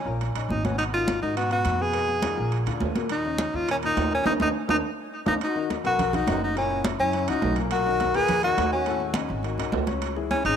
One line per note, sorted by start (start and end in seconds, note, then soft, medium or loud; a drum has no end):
0.00 0.31 C#4 medium
0.05 0.32 A#1 medium
0.05 0.29 A#2 medium
0.05 0.29 A#3 medium
0.05 0.30 A#4 medium
0.21 high conga soft
0.21 high timbale medium
0.35 0.48 A#1 medium
0.35 0.59 C#3 medium
0.35 0.59 C#4 medium
0.35 0.59 D#4 medium
0.35 high conga soft
0.35 high timbale medium
0.49 1.16 G#1 medium
0.49 0.66 D#4 medium
0.49 high conga medium
0.64 0.88 B2 medium
0.64 0.88 B3 medium
0.64 0.77 C#4 medium
0.64 0.88 B4 medium
0.64 high conga medium
0.64 high timbale medium
0.78 0.85 D#4 medium
0.78 high conga soft
0.78 high timbale medium
0.93 1.17 D#3 medium
0.93 1.17 D#4 medium
0.93 1.20 F4 medium
0.93 1.17 F#4 medium
0.93 high conga soft
1.08 high conga medium
1.08 high timbale medium
1.21 1.62 G#2 medium
1.21 1.34 D#3 medium
1.21 1.35 D#4 medium
1.21 1.34 D#4 medium
1.21 1.34 F#4 medium
1.36 1.48 B2 medium
1.36 1.48 B3 medium
1.36 1.50 F#4 medium
1.36 1.49 B4 medium
1.36 high conga soft
1.36 high timbale medium
1.51 1.75 B2 medium
1.51 1.75 B3 medium
1.51 1.83 F#4 loud
1.51 1.75 B4 medium
1.51 high conga soft
1.51 high timbale medium
1.65 2.32 F2 medium
1.65 high conga medium
1.65 high timbale medium
1.80 1.92 B2 medium
1.80 1.92 B3 medium
1.80 2.68 G#4 loud
1.80 1.92 B4 medium
1.80 high conga soft
1.94 2.18 B2 medium
1.94 2.18 B3 medium
1.94 2.18 B4 medium
1.94 high conga soft
1.94 high timbale medium
2.08 high conga soft
2.22 2.35 D#3 medium
2.22 2.35 D#4 medium
2.22 2.35 F4 medium
2.22 high conga medium
2.22 high timbale medium
2.37 2.64 A#1 medium
2.37 2.61 A#2 medium
2.37 2.61 A#3 medium
2.37 2.61 A#4 medium
2.52 high conga soft
2.52 high timbale medium
2.66 2.80 D2 medium
2.66 2.90 D3 medium
2.66 2.90 D4 medium
2.66 2.91 F4 medium
2.66 high conga soft
2.66 high timbale medium
2.80 3.48 D#2 medium
2.80 high conga medium
2.80 low timbale medium
2.95 3.19 A#2 medium
2.95 3.19 A#3 medium
2.95 3.19 A#4 medium
2.95 high conga medium
2.95 high timbale medium
3.09 3.57 D#4 loud
3.09 high conga soft
3.09 high timbale medium
3.25 3.49 C#3 medium
3.25 3.49 C#4 medium
3.25 3.49 D#4 medium
3.25 high conga soft
3.38 high conga medium
3.38 high timbale medium
3.53 3.94 D#2 medium
3.53 3.65 C#3 medium
3.53 3.66 C#4 medium
3.53 3.66 D#4 medium
3.53 3.69 F4 loud
3.68 3.80 A#2 medium
3.68 3.80 A#3 medium
3.68 3.77 C#4 medium
3.68 3.80 A#4 medium
3.68 high conga soft
3.68 high timbale medium
3.82 4.07 A#2 medium
3.82 4.07 A#3 medium
3.82 4.11 D#4 loud
3.82 4.07 A#4 medium
3.82 high conga soft
3.82 high timbale medium
3.97 4.24 D#2 medium
3.97 high conga medium
3.97 high timbale medium
3.97 low timbale medium
4.11 4.23 A#2 medium
4.11 4.23 A#3 medium
4.11 4.26 C#4 medium
4.11 4.23 A#4 medium
4.11 high conga soft
4.25 4.36 D#2 medium
4.25 4.35 A#3 medium
4.25 4.35 C#4 medium
4.25 4.34 D#4 medium
4.25 4.33 D#4 medium
4.25 high conga medium
4.25 high timbale medium
4.40 4.51 D#2 medium
4.40 4.49 A#3 medium
4.40 4.49 C#4 medium
4.40 4.49 D#4 medium
4.40 4.48 D#4 medium
4.40 high conga medium
4.40 high timbale medium
4.68 4.80 D#2 medium
4.68 4.78 A#3 medium
4.68 4.78 C#4 medium
4.68 4.78 D#4 medium
4.68 4.77 D#4 medium
4.68 high conga medium
4.68 high timbale medium
5.26 5.37 D#2 medium
5.26 5.35 B3 medium
5.26 5.36 C#4 medium
5.26 5.35 D#4 medium
5.26 5.34 D#4 medium
5.26 high conga medium
5.26 high timbale medium
5.41 5.69 D#4 medium
5.41 5.69 F#4 medium
5.41 high conga soft
5.41 high timbale medium
5.55 5.79 D#3 medium
5.55 5.79 D#4 medium
5.55 5.79 F#4 medium
5.55 high conga soft
5.70 high conga medium
5.70 high timbale medium
5.70 low timbale medium
5.84 6.24 B1 medium
5.84 6.08 B2 medium
5.84 6.08 B3 medium
5.84 6.17 F#4 loud
5.84 6.15 A#4 medium
5.84 6.08 B4 medium
5.84 high conga soft
5.84 high timbale medium
5.99 high conga soft
5.99 low conga medium
5.99 high timbale medium
6.13 6.25 D#3 medium
6.13 6.25 D#4 medium
6.13 6.43 D#4 medium
6.13 6.25 F#4 medium
6.13 6.42 F#4 medium
6.13 high conga soft
6.13 low conga medium
6.13 high timbale medium
6.27 6.94 F#1 medium
6.27 6.51 D#3 medium
6.27 6.51 D#4 medium
6.27 6.51 F#4 medium
6.27 high conga medium
6.27 high timbale medium
6.27 low timbale medium
6.44 6.56 D#4 medium
6.44 6.56 F#4 medium
6.55 6.79 A#2 medium
6.55 6.80 A#3 medium
6.55 6.84 C#4 medium
6.55 6.83 E4 medium
6.55 6.80 A#4 medium
6.55 high conga soft
6.55 high timbale medium
6.70 high conga soft
6.85 7.09 C#3 medium
6.85 7.09 C#4 medium
6.85 7.09 E4 medium
6.85 high conga medium
6.85 high timbale medium
6.85 low timbale medium
6.99 7.26 F#2 medium
6.99 7.30 C#4 loud
6.99 7.30 E4 medium
6.99 high conga soft
7.13 7.26 C#3 medium
7.13 7.26 C#4 medium
7.13 7.27 E4 medium
7.13 high conga soft
7.13 high timbale medium
7.28 7.42 C#2 medium
7.28 7.52 C#3 medium
7.28 7.53 C#4 medium
7.28 7.57 D#4 loud
7.28 7.53 E4 medium
7.28 7.57 F#4 medium
7.28 high conga soft
7.28 high timbale medium
7.42 8.09 B1 loud
7.42 high conga medium
7.42 low timbale medium
7.56 7.81 A#2 medium
7.56 7.81 A#3 medium
7.56 7.81 A#4 medium
7.56 high timbale medium
7.71 8.17 F#4 loud
7.71 8.16 A#4 medium
7.71 high conga soft
7.71 high timbale medium
7.86 8.10 D#3 medium
7.86 8.10 D#4 medium
7.86 8.10 F#4 medium
7.86 high conga soft
8.00 high conga medium
8.00 high timbale medium
8.00 low timbale medium
8.14 8.55 D#2 medium
8.14 8.39 A#2 medium
8.14 8.38 A#3 medium
8.14 8.43 G#4 loud
8.14 8.39 A#4 medium
8.14 8.43 B4 loud
8.14 high conga soft
8.14 high timbale medium
8.28 high conga soft
8.28 low conga medium
8.28 high timbale medium
8.43 8.55 D#3 medium
8.43 8.56 D#4 medium
8.43 8.70 F#4 loud
8.43 8.56 F#4 medium
8.43 8.71 A#4 medium
8.43 high conga soft
8.43 high timbale medium
8.57 9.24 D#2 medium
8.57 8.81 D#3 medium
8.57 8.82 D#4 medium
8.57 8.82 F#4 medium
8.57 high conga medium
8.57 high timbale medium
8.57 low timbale medium
8.73 9.13 C#4 medium
8.73 9.13 F#4 medium
8.86 9.10 A2 medium
8.86 9.11 A3 medium
8.86 9.11 A4 medium
8.86 high conga soft
8.86 high timbale medium
9.00 high conga soft
9.14 9.39 C#3 medium
9.14 9.40 C#4 medium
9.14 9.40 D#4 medium
9.14 high conga medium
9.14 high timbale medium
9.14 low timbale medium
9.29 9.57 G#1 medium
9.29 high conga soft
9.43 9.56 D#3 medium
9.43 9.56 D#4 medium
9.43 9.56 F#4 medium
9.43 high conga soft
9.43 high timbale medium
9.58 9.72 C2 medium
9.58 9.82 D#3 medium
9.58 9.82 D#4 medium
9.58 9.82 F#4 medium
9.58 high conga soft
9.58 high timbale medium
9.72 10.39 C#2 medium
9.72 high conga medium
9.72 low timbale medium
9.87 10.11 C#3 medium
9.87 10.11 C#4 medium
9.87 10.11 C#5 medium
9.87 high conga medium
9.87 high timbale medium
10.02 high conga soft
10.02 high timbale medium
10.16 10.39 E3 medium
10.16 10.40 E4 medium
10.16 10.40 G#4 medium
10.16 high conga soft
10.31 10.44 C#4 medium
10.31 10.44 E4 medium
10.31 high conga medium
10.31 high timbale medium
10.31 low timbale medium
10.44 10.56 G#1 medium
10.44 10.56 C#3 medium
10.44 10.56 C#4 medium
10.44 10.56 D#4 loud
10.44 10.56 G#4 medium
10.44 10.56 C#5 medium
10.44 high conga soft
10.44 high timbale medium